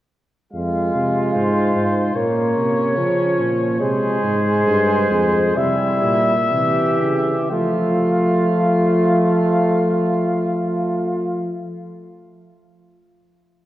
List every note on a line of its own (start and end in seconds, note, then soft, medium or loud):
0.53 0.91 F2 medium
0.53 2.11 G#3 medium
0.53 2.11 F4 medium
0.53 1.30 F5 medium
0.94 1.34 C3 medium
1.34 1.74 G#2 medium
1.34 2.17 C5 medium
1.75 2.15 G#2 medium
2.14 2.55 A#2 medium
2.14 2.96 A#3 medium
2.14 3.77 C#4 medium
2.14 3.80 C#5 medium
2.56 2.99 C3 medium
2.97 3.38 C#3 medium
2.97 3.79 F3 medium
3.39 3.82 A#2 medium
3.80 4.23 C3 medium
3.80 5.53 G#3 medium
3.80 5.53 G#4 medium
3.80 5.58 C5 medium
4.23 4.66 G#2 medium
4.66 5.10 G2 medium
5.10 5.55 F2 medium
5.56 6.05 C3 medium
5.56 6.35 G3 medium
5.56 6.35 E4 medium
5.56 7.50 E5 medium
6.03 6.53 A#2 medium
6.51 7.00 C3 medium
6.51 7.49 E3 medium
6.51 7.49 G4 medium
7.01 7.36 C#3 medium
7.50 11.53 F3 medium
7.50 11.53 A3 medium
7.50 11.53 F4 medium
7.50 11.53 F5 medium